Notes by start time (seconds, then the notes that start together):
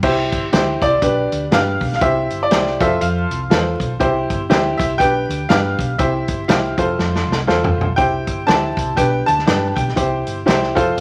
0.03 C2 E4 G4 C5, kick, crash
0.32 G1, kick, closed hi-hat
0.52 D2 E4 G4 C5, snare, closed hi-hat
0.82 C2 D5, kick, closed hi-hat
1.02 B1 D4 G4 B4, kick, closed hi-hat
1.32 D2, closed hi-hat
1.51 G2 D4 G4 B4 F5, snare, closed hi-hat
1.81 B1, kick, open hi-hat
1.93 F5, snare
2.01 C2 E4 G4 C5 E5, kick, closed hi-hat
2.30 G1, closed hi-hat
2.43 D5
2.51 C2 E4 G4 C5, snare, closed hi-hat
2.67 snare
2.80 F1 F4 A4 C5 E5, kick, closed hi-hat
3.01 F2 F5, closed hi-hat
3.31 C2, closed hi-hat
3.50 E2 F4 A4 B4, snare, closed hi-hat
3.58 C5
3.80 B1, kick, closed hi-hat
3.99 C2 E4 G4 C5, kick, closed hi-hat
4.30 G1, kick, closed hi-hat
4.50 D2 E4 G4 C5, snare, closed hi-hat
4.77 C2 E5, kick, closed hi-hat
4.98 B1 D4 G4 B4 G5, kick, closed hi-hat
5.29 D2, closed hi-hat
5.49 G2 D4 G4 B4 F5, snare, closed hi-hat
5.79 B1, kick, closed hi-hat
5.98 C2 E4 G4 C5 E5, kick, closed hi-hat
6.28 G1, kick, closed hi-hat
6.48 C2 E4 G4 C5 F5, snare, closed hi-hat
6.78 F1 F4 A4 C5, kick, closed hi-hat
6.99 F2, snare
7.16 snare
7.28 C2
7.32 snare
7.47 E2 F4 A4 C5, snare
7.64 floor tom
7.78 B1, floor tom
7.96 C2 E4 G4 C5 G5, kick, closed hi-hat
8.27 G1, kick, closed hi-hat
8.46 D2 D4 G4 C5 A5, snare, closed hi-hat
8.52 E4
8.77 C2, kick, closed hi-hat
8.96 B1 D4 G4 B4 G5, kick, closed hi-hat
9.26 D2 A5, closed hi-hat
9.39 snare
9.46 G2 D4 G4 B4, snare, closed hi-hat
9.68 A5
9.76 B1 G5, kick, closed hi-hat
9.88 snare
9.96 C2 E4 G4 C5, kick, closed hi-hat
10.27 G1, closed hi-hat
10.46 C2 E4 G4 C5, snare, closed hi-hat
10.63 snare
10.75 F1 F4 A4 C5, kick, closed hi-hat
10.97 F2